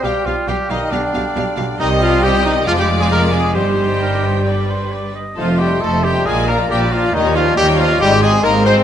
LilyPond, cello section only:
\new Staff \with { instrumentName = "Cello section" } { \clef bass \time 4/4 \key c \minor \tempo 4 = 136 b,8 b,8 b,8 b,8 b,8 b,8 b,8 b,8 | c2 f,2 | g,2.~ g,8 r8 | f,4 f,4 bes,4 bes,4 |
ees,4 ees,4 aes,4 aes,4 | }